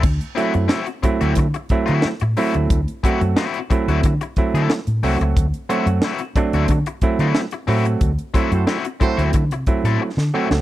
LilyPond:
<<
  \new Staff \with { instrumentName = "Horn section" } { \time 4/4 \key d \mixolydian \tempo 4 = 90 r1 | r1 | r1 | r8. <c' fis' a' c''>16 r8 <c' fis' a' c''>8 r2 | }
  \new Staff \with { instrumentName = "Overdriven electric guitar" } { \time 4/4 \key d \mixolydian r8 <c' e' fis'>16 r16 <c' e' fis'>16 r8 <c' e' fis'>16 r8. <c' e' fis'>16 r8 <c' e' fis'>16 r16 | r8 <c' e' fis'>16 r16 <c' e' fis'>16 r8 <c' e' fis'>16 r8. <c' e' a'>16 r8 <c' e' fis'>16 r16 | r8 <c' e' fis'>16 r16 <c' e' fis'>16 r8 <c' e' fis'>16 r8. <c' e' fis'>16 r8 <c' e' fis'>16 r16 | r8 <c' e' fis'>16 r16 <c' e' fis'>16 r8 <c' e' fis'>16 r8. <c' e' a'>16 r8 <c' e' fis'>16 r16 | }
  \new Staff \with { instrumentName = "Clav" } { \time 4/4 \key d \mixolydian r8 <fis a c' e'>8 r8 <fis a c' e'>8 r8 <fis a c' e'>8 r8 <fis a c' e'>8 | r8 <fis a c' fis'>8 r8 <fis a c' e'>8 r8 <fis a c' e'>8 r8 <fis a c' fis'>8 | r8 <fis a c' fis'>8 r8 <fis a c' d'>8 r8 <fis a c' e'>8 r8 <fis a c' fis'>8 | r8 <fis a c' e'>8 r8 <fis a c' e'>8 r8 <fis a c' e'>8 r8 <fis a c' fis'>8 | }
  \new Staff \with { instrumentName = "Fingered electric bass" } { \clef bass \time 4/4 \key d \mixolydian d,16 r8 fis,16 r8. d,16 d16 r8 d16 r16 a,16 r16 d,16 | d,16 r8 fis,16 r8. d,16 d16 r8 d16 r16 a,16 c,16 cis,16 | d,16 r8 fis,16 r8. d,16 d16 r8 d16 r8 a,8 | d,16 r8 fis,16 r8. d,16 d16 c16 r16 a,16 r16 d16 r16 cis,16 | }
  \new DrumStaff \with { instrumentName = "Drums" } \drummode { \time 4/4 <cymc bd>16 hh16 hh16 hh16 sn16 hh16 <hh bd>16 hh16 <hh bd>16 hh16 <hh bd>16 hh16 sn16 hh16 hho16 hh16 | <hh bd>16 hh16 <hh bd>16 hh16 sn16 hh16 <hh bd>16 hh16 <hh bd>16 hh16 <hh bd>16 hh16 sn16 hh16 hho16 hh16 | <hh bd>16 hh16 hh16 hh16 sn16 hh16 <hh bd>16 hh16 <hh bd>16 hh16 <hh bd>16 hh16 sn16 hh16 hho16 hh16 | <hh bd>16 hh16 <hh bd>16 hh16 sn16 hh16 <hh bd>16 hh16 <hh bd>16 hh16 <hh bd>16 hh16 r16 sn8 sn16 | }
>>